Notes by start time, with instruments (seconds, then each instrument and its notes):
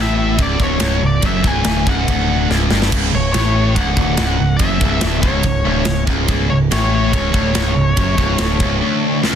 Already playing: picked electric bass A1, distorted electric guitar A2
0.01 lead electric guitar E5
0.38 picked electric bass C#1, distorted electric guitar C#2, kick, ride bell
0.42 lead electric guitar D5
0.59 picked electric bass D1, distorted electric guitar D2, lead electric guitar C#5, kick
0.80 picked electric bass C#1, distorted electric guitar C#2, snare, ride bell
1.01 picked electric bass C#1, distorted electric guitar C#2
1.06 lead electric guitar D5
1.21 picked electric bass F#1, distorted electric guitar F#2, kick, ride bell
1.26 lead electric guitar E5
1.42 picked electric bass C#1, distorted electric guitar C#2, kick
1.47 lead electric guitar G#5
1.64 picked electric bass D1, distorted electric guitar D2, snare, ride bell
1.85 picked electric bass C#1, distorted electric guitar C#2, lead electric guitar F#5, kick
2.06 picked electric bass D1, distorted electric guitar D2, kick, ride bell
2.49 picked electric bass C#1, distorted electric guitar C#2, snare
2.70 picked electric bass G1, distorted electric guitar G2, snare
2.82 snare
2.91 picked electric bass C#1, distorted electric guitar C#2, kick, ride bell, crash
3.12 picked electric bass C#1, distorted electric guitar C#2, lead electric guitar C#5
3.33 picked electric bass A1, distorted electric guitar A2, lead electric guitar C#5, snare, ride bell
3.75 picked electric bass C#1, distorted electric guitar C#2, lead electric guitar F#5, kick, ride bell
3.96 picked electric bass D1, distorted electric guitar D2, kick
4.17 picked electric bass C#1, distorted electric guitar C#2, snare, ride bell
4.37 picked electric bass C#1, distorted electric guitar C#2
4.42 distorted electric guitar C#2
4.57 picked electric bass F#1, distorted electric guitar F#2, lead electric guitar E5, kick, ride bell
4.80 picked electric bass C#1, distorted electric guitar C#2, kick
5.01 picked electric bass D1, distorted electric guitar D2, snare, ride bell
5.22 picked electric bass C#1, distorted electric guitar C#2, lead electric guitar C#5, kick
5.43 picked electric bass C#1, distorted electric guitar C#2, kick, ride bell
5.64 picked electric bass D1, distorted electric guitar D2
5.85 picked electric bass C#1, distorted electric guitar C#2, snare, ride bell
6.07 picked electric bass C#1, distorted electric guitar C#2, kick
6.28 picked electric bass C#1, distorted electric guitar C#2, kick, ride bell
6.50 picked electric bass C#1, distorted electric guitar C#2, lead electric guitar C#5
6.71 picked electric bass A1, distorted electric guitar A2, lead electric guitar C#5, snare, ride bell
6.95 lead electric guitar C#5
7.13 picked electric bass C#1, distorted electric guitar C#2, kick, ride bell
7.34 picked electric bass D1, distorted electric guitar D2, kick
7.54 picked electric bass C#1, distorted electric guitar C#2, snare, ride bell
7.76 picked electric bass C#1, distorted electric guitar C#2
7.97 picked electric bass F#1, distorted electric guitar F#2, kick, ride bell
8.18 picked electric bass C#1, distorted electric guitar C#2, kick
8.38 picked electric bass D1, distorted electric guitar D2, snare, ride bell
8.60 picked electric bass C#1, distorted electric guitar C#2, kick
8.80 distorted electric guitar D2
9.23 distorted electric guitar C#2, snare